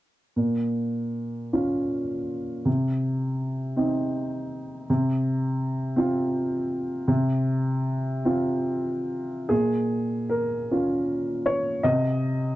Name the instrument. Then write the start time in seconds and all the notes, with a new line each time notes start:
upright piano
0.36 A#2
1.53 C#4 F4
2.65 C3
3.77 C4 D#4
4.90 C3
5.96 C4 F4
7.08 C3
8.25 C4 F4
9.49 A#2 G#4
10.29 A#4
10.71 C#4 F4
11.46 C#5
11.83 C3 D#5